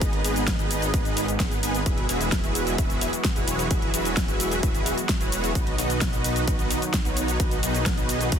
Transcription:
Already playing: analog synth pad D#3 G#3 B3 G#4 B4
0.01 detuned saw bass G#1, supersaw synth B3 D#4 G#4 B4 D#5, kick, closed hi-hat, shaker
0.13 closed hi-hat
0.24 detuned saw bass G#1, supersaw synth B3 D#4 G#4 B4 D#5, open hi-hat, shaker
0.36 closed hi-hat, shaker
0.48 kick, snare, closed hi-hat, shaker
0.59 detuned saw bass G#1, supersaw synth B3 D#4 G#4 B4 D#5, closed hi-hat, shaker
0.71 open hi-hat, shaker
0.82 closed hi-hat, shaker
0.94 detuned saw bass G#1, supersaw synth B3 D#4 G#4 B4 D#5, kick, closed hi-hat, shaker
1.05 closed hi-hat, shaker
1.17 open hi-hat, shaker
1.28 closed hi-hat, shaker
1.40 detuned saw bass G#1, supersaw synth B3 D#4 G#4 B4 F#5, kick, snare, closed hi-hat, shaker
1.51 closed hi-hat, shaker
1.63 detuned saw bass G#1, supersaw synth B3 D#4 G#4 B4 G#5, open hi-hat, shaker
1.75 closed hi-hat, shaker
1.86 detuned saw bass E1, analog synth pad E3 F#3 F#4, supersaw synth E4 F#4 G#4 B4 E5, kick, closed hi-hat, shaker
1.98 closed hi-hat
2.09 detuned saw bass E1, supersaw synth E4 F#4 G#4 B4 E5, open hi-hat, shaker
2.21 closed hi-hat, shaker
2.32 kick, snare, closed hi-hat, shaker
2.44 detuned saw bass E1, supersaw synth E4 F#4 G#4 B4 E5, closed hi-hat, shaker
2.55 open hi-hat, shaker
2.67 closed hi-hat, shaker
2.78 detuned saw bass E1, supersaw synth E4 F#4 G#4 B4 E5, kick, closed hi-hat, shaker
2.90 closed hi-hat, shaker
3.01 open hi-hat, shaker
3.13 closed hi-hat, shaker
3.25 kick, snare, closed hi-hat, shaker
3.36 detuned saw bass E1, supersaw synth E4 F#4 G#4 B4 C#5, closed hi-hat, shaker
3.48 open hi-hat, shaker
3.59 closed hi-hat, shaker
3.71 detuned saw bass E1, supersaw synth E4 F#4 G#4 B4 E5, kick, closed hi-hat, shaker
3.82 closed hi-hat
3.94 detuned saw bass E1, supersaw synth E4 F#4 G#4 B4 E5, open hi-hat, shaker
4.05 closed hi-hat, shaker
4.17 kick, snare, closed hi-hat, shaker
4.28 detuned saw bass E1, supersaw synth E4 F#4 G#4 B4 E5, closed hi-hat, shaker
4.40 open hi-hat, shaker
4.51 closed hi-hat, shaker
4.63 detuned saw bass E1, supersaw synth E4 F#4 G#4 B4 E5, kick, closed hi-hat, shaker
4.75 closed hi-hat, shaker
4.86 open hi-hat, shaker
4.98 closed hi-hat, shaker
5.09 kick, snare, closed hi-hat, shaker
5.21 detuned saw bass E1, supersaw synth E4 F#4 G#4 B4 C#5, closed hi-hat, shaker
5.32 open hi-hat, shaker
5.44 closed hi-hat, shaker
5.55 detuned saw bass B1, analog synth pad B2 D#3 D#4, supersaw synth B3 D#4 F#4 B4 D#5, kick, closed hi-hat, shaker
5.67 closed hi-hat
5.78 detuned saw bass B1, supersaw synth B3 D#4 F#4 B4 D#5, open hi-hat, shaker
5.90 closed hi-hat, shaker
6.01 kick, snare, closed hi-hat, shaker
6.13 detuned saw bass B1, supersaw synth B3 D#4 F#4 B4 D#5, closed hi-hat, shaker
6.24 open hi-hat, shaker
6.36 closed hi-hat, shaker
6.48 detuned saw bass B1, supersaw synth B3 D#4 F#4 B4 D#5, kick, closed hi-hat, shaker
6.59 closed hi-hat, shaker
6.71 open hi-hat, shaker
6.82 closed hi-hat, shaker
6.94 kick, snare, closed hi-hat, shaker
7.05 detuned saw bass B1, supersaw synth B3 D#4 F#4 B4 C#5, closed hi-hat, shaker
7.17 open hi-hat, shaker
7.28 closed hi-hat, shaker
7.40 detuned saw bass B1, supersaw synth B3 D#4 F#4 B4 D#5, analog synth pad G#4, kick, closed hi-hat, shaker
7.51 closed hi-hat, shaker
7.63 detuned saw bass B1, supersaw synth B3 D#4 F#4 B4 D#5, open hi-hat, shaker
7.75 closed hi-hat, shaker
7.86 kick, snare, closed hi-hat, shaker
7.98 detuned saw bass B1, supersaw synth B3 D#4 F#4 B4 D#5, closed hi-hat, shaker
8.09 open hi-hat, shaker
8.21 closed hi-hat, shaker
8.32 detuned saw bass B1, supersaw synth B3 D#4 F#4 B4 D#5, kick, closed hi-hat, shaker

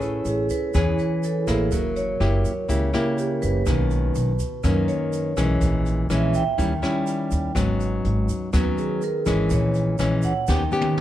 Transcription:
Already playing: upright bass A1, nylon-string guitar A3 C#4 G#4 B4, vibraphone C#5
0.01 vibraphone E4, closed hi-hat, shaker
0.25 upright bass A1, vibraphone G#4, closed hi-hat, shaker
0.50 vibraphone B4, kick, closed hi-hat, shaker
0.74 upright bass E2, nylon-string guitar E3 C#4 G#4 B4, vibraphone C#5, kick, cross-stick, closed hi-hat, shaker
0.98 vibraphone B4, closed hi-hat, shaker
1.23 vibraphone A4, closed hi-hat, shaker
1.47 upright bass A1, nylon-string guitar A#3 E4, vibraphone G#4, kick, cross-stick, closed hi-hat, shaker
1.72 upright bass F#1, nylon-string guitar F#3, vibraphone A#4, kick, closed hi-hat, shaker
1.96 vibraphone C#5, closed hi-hat, shaker
2.20 upright bass F#1, nylon-string guitar A#3 E4 G4, cross-stick, closed hi-hat
2.44 kick, closed hi-hat, shaker
2.69 upright bass C#2, nylon-string guitar C#3 A#3 E4 G4, kick, closed hi-hat, shaker
2.93 nylon-string guitar A#3 E4 G4, cross-stick, closed hi-hat, shaker
3.18 vibraphone G4, closed hi-hat, shaker
3.42 upright bass F#1, vibraphone B4, kick, closed hi-hat, shaker
3.66 upright bass B1, nylon-string guitar B2 D#3 A#3 C#4, kick, cross-stick, closed hi-hat, shaker
3.91 closed hi-hat, shaker
4.15 upright bass B1, closed hi-hat, shaker
4.39 kick, closed hi-hat, shaker
4.64 nylon-string guitar F#2 D#3 A#3 C#4, upright bass F#2, vibraphone A#4, kick, cross-stick, closed hi-hat, shaker
4.88 vibraphone C#5, closed hi-hat, shaker
5.13 closed hi-hat, shaker
5.37 upright bass B1, nylon-string guitar E3 G#3 C#4, kick, cross-stick, closed hi-hat, shaker
5.61 upright bass A#1, nylon-string guitar A#2, kick, closed hi-hat, shaker
5.86 closed hi-hat, shaker
6.10 upright bass A#1, nylon-string guitar E3 G#3 C#4, vibraphone E5, cross-stick, closed hi-hat, shaker
6.34 vibraphone G5, kick, closed hi-hat, shaker
6.58 upright bass D#2, nylon-string guitar D#3 G3 C#4 E4, kick, closed hi-hat, shaker
6.82 nylon-string guitar G3 C#4 E4, cross-stick, closed hi-hat, shaker
7.07 closed hi-hat, shaker
7.31 upright bass D#2, kick, closed hi-hat, shaker
7.55 upright bass G#1, nylon-string guitar G#2 F#3 B3 C#4, kick, cross-stick, closed hi-hat, shaker
7.80 closed hi-hat, shaker
8.04 upright bass G#1, closed hi-hat
8.29 kick, closed hi-hat, shaker
8.53 upright bass D#2, nylon-string guitar D#3 F#3 B3 C#4, vibraphone B4, kick, cross-stick, closed hi-hat, shaker
8.78 vibraphone G#4, closed hi-hat, shaker
9.02 vibraphone A#4, closed hi-hat, shaker
9.26 upright bass G#1, nylon-string guitar E3 G#3 C#4, vibraphone B4, kick, cross-stick, closed hi-hat, shaker
9.50 upright bass A#1, nylon-string guitar A#2, vibraphone C#5, kick, closed hi-hat, shaker
9.74 closed hi-hat, shaker
9.99 upright bass A#1, nylon-string guitar E3 G#3 C#4, cross-stick, closed hi-hat, shaker
10.22 vibraphone F#5, kick, closed hi-hat, shaker
10.47 upright bass D#2, nylon-string guitar D#3 B3 C#4 G4, vibraphone G5, kick, snare, shaker
10.72 nylon-string guitar B3 C#4 G4, shaker
10.81 high tom
10.97 mid tom

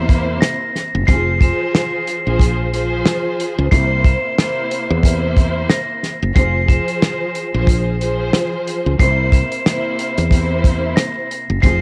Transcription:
Already playing: fretless electric bass E2, string section C3 A#3 E4 C5
0.09 kick, closed hi-hat
0.41 glockenspiel A#6, cross-stick, snare, closed hi-hat
0.76 snare, closed hi-hat
0.95 fretless electric bass F#1
1.07 fretless electric bass F1, string section F3 F4 G#4 C5, glockenspiel C7, kick, closed hi-hat
1.39 string section F3 F4 G#4 C5, glockenspiel E7, kick, closed hi-hat
1.75 cross-stick, snare, closed hi-hat
2.07 closed hi-hat
2.25 fretless electric bass A#1, string section F3 F4 G#4 C5
2.39 kick, closed hi-hat
2.73 string section F3 F4 G#4 C5, closed hi-hat
3.06 cross-stick, snare, closed hi-hat
3.40 closed hi-hat
3.58 fretless electric bass C#2
3.71 fretless electric bass C2, string section C3 A#3 E4 C5, glockenspiel C7, kick, closed hi-hat
4.04 glockenspiel E7, kick, closed hi-hat
4.38 string section C3 A#3 E4 C5, cross-stick, snare, closed hi-hat
4.71 closed hi-hat
4.90 fretless electric bass E2
5.03 string section C3 A#3 E4 C5, kick, closed hi-hat
5.37 kick, closed hi-hat
5.70 glockenspiel A#6, cross-stick, snare, closed hi-hat
6.03 snare, closed hi-hat
6.22 fretless electric bass F#1
6.35 fretless electric bass F1, string section F3 F4 G#4 C5, glockenspiel C7, kick, closed hi-hat
6.67 string section F3 F4 G#4 C5, glockenspiel E7, kick, closed hi-hat
6.88 closed hi-hat
7.02 cross-stick, snare, closed hi-hat
7.35 closed hi-hat
7.53 fretless electric bass A#1, string section F3 F4 G#4 C5
7.67 kick, closed hi-hat
8.00 string section F3 F4 G#4 C5, closed hi-hat
8.33 cross-stick, snare, closed hi-hat
8.67 closed hi-hat
8.86 fretless electric bass C#2
8.99 fretless electric bass C2, string section C3 A#3 E4 C5, glockenspiel C7, kick, closed hi-hat
9.32 glockenspiel E7, kick, closed hi-hat
9.52 closed hi-hat
9.66 string section C3 A#3 E4 C5, cross-stick, snare, closed hi-hat
9.99 closed hi-hat
10.18 fretless electric bass E2, closed hi-hat
10.31 string section C3 A#3 E4 C5, kick, closed hi-hat
10.64 kick, closed hi-hat
10.96 glockenspiel A#6, cross-stick, snare, closed hi-hat
11.31 closed hi-hat
11.50 fretless electric bass F#1
11.62 fretless electric bass F1, string section F3 F4 G#4 C5, glockenspiel C7, kick, closed hi-hat

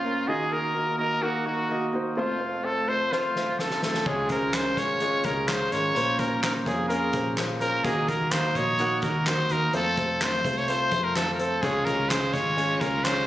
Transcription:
Already playing: grand piano A#1 A#2 A#3 C#4 F4 A#4 C5 C#5, trumpet F4
0.04 grand piano A#3 C#4 F4 A#4
0.27 grand piano D#2 D#3 A#3 D#4 F#4 D#5, trumpet G#4
0.51 grand piano A#3 D#4 F#4 D#5, trumpet A#4
0.75 grand piano A#3 D#4 F#4 D#5
0.98 grand piano A#3 D#4 F#4 D#5, trumpet A#4
1.21 grand piano A#3 D#4 F#4 A#4, trumpet F#4
1.46 grand piano A#3 D#4 F#4 A#4, trumpet F#4
1.69 grand piano A#3 D#4 F#4 D#5
1.93 grand piano A#3 D#4 F#4 C5
2.17 grand piano F1 F2 A3 C4 F4 C5, trumpet F4
2.40 grand piano A3 C4 C5
2.64 grand piano A3 C4 F4 C5, trumpet A4
2.88 grand piano A3 C4 F4 C5, trumpet C5
3.12 grand piano A3 C4 F4 C5, trumpet F4, snare
3.36 grand piano A3 C4 F4 C5, snare
3.59 grand piano A3 C4 F4 C5, trumpet A4, snare
3.70 snare
3.82 grand piano A3 C4 F4 C5, trumpet A4, snare
3.94 snare
4.05 fingered electric bass C#2, grand piano C#3 G#3 C#4 F4 C#5, trumpet G#4, kick, crash
4.29 grand piano G#3 C#4 F4 C5, trumpet A#4, kick, closed hi-hat
4.43 fingered electric bass C#2
4.53 grand piano G#3 C#4 F4 A#4, trumpet C5, snare, clap, closed hi-hat
4.76 fingered electric bass G#1, grand piano G#3 C#4 F4 C#5, trumpet C#5, kick, closed hi-hat
5.00 grand piano G#3 C#4 F4 C#5, closed hi-hat
5.23 fingered electric bass C#2, grand piano G#3 C#4 F4 G#4, trumpet A#4, kick, closed hi-hat
5.47 grand piano G#3 C#4 F4 C#5, trumpet C5, snare, clap, closed hi-hat
5.72 fingered electric bass G#1, grand piano G#3 C#4 F4 A#4, trumpet C#5, closed hi-hat
5.95 fingered electric bass A#1, grand piano A#2 A#3 C#4 F4 C5, closed hi-hat
6.19 grand piano A#3 C#4 F4 C5, trumpet A#4, kick, closed hi-hat
6.42 grand piano A#3 C#4 F4 C5, trumpet A#4, snare, clap, closed hi-hat
6.65 fingered electric bass F2, grand piano A#3 C#4 F4 C#5, trumpet G#4, kick, closed hi-hat
6.88 grand piano A#3 C#4 F4 G#4, trumpet A#4, closed hi-hat
7.13 fingered electric bass A#1, grand piano A#3 C#4 F4 C5, kick, closed hi-hat
7.37 grand piano A#3 C#4 F4 C5, snare, clap, closed hi-hat
7.61 grand piano A#3 C#4 F4 C5, trumpet A#4, closed hi-hat
7.84 fingered electric bass D#2, grand piano D#3 A#3 D#4 F#4 D#5, trumpet G#4, kick, closed hi-hat
8.07 grand piano A#3 D#4 F#4 D#5, trumpet A#4, kick, closed hi-hat
8.20 fingered electric bass D#2
8.31 grand piano A#3 D#4 F#4 F5, trumpet C5, snare, clap, closed hi-hat
8.55 fingered electric bass A#1, grand piano A#3 D#4 F#4 D#5, trumpet C#5, kick, closed hi-hat
8.78 grand piano A#3 D#4 F#4 F#5, closed hi-hat
9.02 fingered electric bass D#2, grand piano A#3 D#4 F#4 D#5, trumpet A#4, kick, closed hi-hat
9.26 grand piano A#3 D#4 F#4 A#4, trumpet C5, snare, clap, closed hi-hat
9.49 fingered electric bass D#2, grand piano A#3 D#4 F#4 D#5, trumpet A#4, closed hi-hat
9.73 fingered electric bass F2, grand piano A3 C4 F4 C5, trumpet A4, closed hi-hat
9.97 grand piano A3 C4 F4 C5, kick, closed hi-hat
10.21 grand piano A3 C4 F4 C5, trumpet C5, snare, clap, closed hi-hat
10.44 fingered electric bass C2, grand piano A3 C4 F4 C5, kick, closed hi-hat
10.57 trumpet C#5, snare
10.68 grand piano A3 C4 F4 C5, trumpet C5, closed hi-hat
10.91 fingered electric bass F2, grand piano A3 C4 F4 C5, kick, closed hi-hat
11.04 trumpet A#4
11.15 grand piano A3 C4 F4 C5, trumpet A4, snare, clap, closed hi-hat
11.34 trumpet A#4
11.39 grand piano A3 C4 F4 C5, trumpet A4, closed hi-hat
11.62 fingered electric bass C#2, grand piano C#3 G#3 C#4 F4 C#5, overdriven electric guitar F3 G#3 C#4 F4, trumpet G#4, kick, closed hi-hat
11.85 grand piano G#3 C#4 F4 C#5, trumpet A#4, kick, closed hi-hat
11.97 fingered electric bass C#2, overdriven electric guitar G#3 C#4 F4
12.09 grand piano G#3 C#4 F4 G#4, trumpet C5, snare, clap, closed hi-hat
12.32 fingered electric bass G#1, overdriven electric guitar F3 G#3 C#4 F4, grand piano G#3 C#4 F4 C#5, trumpet C#5, kick, closed hi-hat
12.56 grand piano G#3 C#4 F4 C#5, closed hi-hat
12.68 overdriven electric guitar G#3 C#4 F4
12.80 fingered electric bass C#2, grand piano G#3 C#4 F4 C#5, trumpet A#4, kick, closed hi-hat
13.04 grand piano G#3 C#4 F4 C#5, trumpet C5, snare, clap, closed hi-hat
13.15 overdriven electric guitar G#3 C#4 F4

